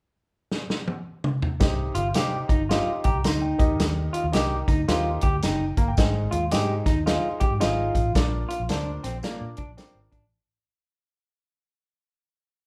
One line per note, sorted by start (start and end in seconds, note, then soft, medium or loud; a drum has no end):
0.51 snare medium
0.70 snare medium
0.88 high tom medium
1.24 mid tom medium
1.42 floor tom medium
1.60 1.89 C2 loud
1.60 2.46 C3 medium
1.60 1.97 D#4 medium
1.60 1.97 G4 medium
1.60 1.97 C5 medium
1.60 1.97 D#5 medium
1.60 kick medium
1.60 snare loud
1.60 closed hi-hat medium
1.60 tambourine medium
1.95 2.11 G1 medium
1.95 2.07 F4 medium
1.95 closed hi-hat medium
2.14 2.43 C3 loud
2.14 2.52 D#4 medium
2.14 2.36 G4 medium
2.14 2.52 G4 medium
2.14 2.52 C5 medium
2.14 2.52 F5 medium
2.14 snare loud
2.14 closed hi-hat medium
2.14 tambourine medium
2.49 2.80 G1 medium
2.49 2.62 D#4 medium
2.49 kick medium
2.49 closed hi-hat medium
2.69 3.07 D#4 medium
2.69 2.91 F4 medium
2.69 3.07 G4 medium
2.69 3.07 C5 medium
2.69 3.07 D#5 medium
2.69 snare medium
2.69 closed hi-hat medium
2.69 tambourine medium
3.04 3.13 A#1 medium
3.04 3.17 G4 medium
3.04 3.24 A#5 medium
3.04 kick medium
3.04 closed hi-hat medium
3.15 3.23 C2 medium
3.24 3.52 D2 medium
3.24 3.76 D#4 medium
3.24 3.41 C6 medium
3.24 snare medium
3.24 closed hi-hat medium
3.24 tambourine medium
3.42 3.68 G5 medium
3.58 3.76 D#2 medium
3.58 4.30 D#3 medium
3.58 4.22 D#4 medium
3.58 4.22 G4 medium
3.58 4.22 A#4 medium
3.58 4.22 D#5 medium
3.58 kick loud
3.58 closed hi-hat medium
3.79 4.07 D#2 medium
3.79 snare loud
3.79 closed hi-hat medium
3.79 tambourine medium
4.13 4.26 F4 medium
4.13 closed hi-hat medium
4.24 4.32 D#2 medium
4.32 4.62 C2 medium
4.32 4.70 D#4 medium
4.32 4.70 G4 medium
4.32 4.55 G4 medium
4.32 4.70 A#4 medium
4.32 4.70 D#5 medium
4.32 snare loud
4.32 closed hi-hat medium
4.32 tambourine medium
4.68 4.84 D2 medium
4.68 4.81 D#4 medium
4.68 kick medium
4.68 closed hi-hat medium
4.88 5.16 D#2 medium
4.88 5.25 D#4 medium
4.88 5.09 F4 medium
4.88 5.25 G4 medium
4.88 5.25 A#4 medium
4.88 5.25 C5 medium
4.88 snare medium
4.88 closed hi-hat medium
4.88 tambourine medium
5.21 5.39 D2 medium
5.21 5.35 G4 medium
5.21 kick medium
5.21 closed hi-hat medium
5.42 5.71 F#1 medium
5.42 5.64 D#4 medium
5.42 5.76 G5 medium
5.42 snare medium
5.42 closed hi-hat medium
5.42 tambourine medium
5.77 5.94 G1 medium
5.77 5.90 A#3 medium
5.77 5.87 A#5 medium
5.77 kick medium
5.77 closed hi-hat medium
5.88 6.14 G5 medium
5.97 6.25 G#1 medium
5.97 6.82 G#2 medium
5.97 6.34 D#4 medium
5.97 6.34 G#4 medium
5.97 6.34 C5 medium
5.97 6.34 D#5 medium
5.97 kick loud
5.97 snare loud
5.97 closed hi-hat medium
5.97 tambourine medium
6.31 6.49 D#2 medium
6.31 6.44 F4 medium
6.31 closed hi-hat medium
6.51 6.80 G#2 loud
6.51 6.88 D#4 medium
6.51 6.73 G4 medium
6.51 6.88 G#4 medium
6.51 6.88 C5 medium
6.51 6.88 D#5 medium
6.51 snare loud
6.51 closed hi-hat medium
6.51 tambourine medium
6.86 7.16 D#2 medium
6.86 6.98 D#4 medium
6.86 kick medium
6.86 snare soft
6.86 closed hi-hat medium
7.06 7.43 D#4 medium
7.06 7.27 F4 medium
7.06 7.43 G#4 medium
7.06 7.43 C5 medium
7.06 7.43 D#5 medium
7.06 snare loud
7.06 closed hi-hat medium
7.06 tambourine medium
7.40 7.49 G2 medium
7.40 7.53 G4 medium
7.40 kick medium
7.40 closed hi-hat medium
7.51 7.59 G#2 medium
7.60 7.89 G#1 medium
7.60 7.97 D#4 medium
7.60 8.12 F4 medium
7.60 7.97 G#4 medium
7.60 7.97 C5 medium
7.60 7.97 D#5 medium
7.60 snare medium
7.60 closed hi-hat medium
7.60 tambourine medium
7.95 8.11 A1 medium
7.95 kick medium
7.95 closed hi-hat medium
8.15 8.43 A#1 loud
8.15 9.00 A#2 medium
8.15 8.51 D4 medium
8.15 8.52 F4 medium
8.15 8.52 A#4 medium
8.15 8.52 D5 medium
8.15 kick medium
8.15 snare loud
8.15 closed hi-hat medium
8.15 tambourine medium
8.49 8.61 F4 medium
8.49 closed hi-hat medium
8.60 8.68 A#1 loud
8.69 8.97 D2 medium
8.69 8.90 D4 medium
8.69 9.06 D4 medium
8.69 9.06 F4 medium
8.69 9.06 A#4 medium
8.69 9.06 C5 medium
8.69 snare loud
8.69 closed hi-hat medium
8.69 tambourine medium
9.04 9.20 A#1 medium
9.04 9.16 C4 medium
9.04 snare soft
9.04 closed hi-hat medium
9.23 9.44 A#3 medium
9.23 9.60 D4 medium
9.23 9.60 F4 medium
9.23 9.60 A#4 medium
9.23 9.60 D5 medium
9.23 snare medium
9.23 closed hi-hat medium
9.23 tambourine medium
9.41 9.55 A#2 medium
9.57 9.66 C2 medium
9.57 9.70 D4 medium
9.57 kick medium
9.57 closed hi-hat medium
9.69 9.77 A#1 medium
9.77 9.99 C4 medium
9.77 10.14 D4 medium
9.77 10.14 F4 medium
9.77 10.14 A#4 medium
9.77 10.14 D5 medium
9.77 snare medium
9.77 closed hi-hat medium
9.77 tambourine medium
9.95 10.09 G#1 medium
10.12 10.21 G#1 medium
10.12 10.24 D4 medium
10.12 kick medium
10.12 closed hi-hat medium
10.22 10.30 A1 medium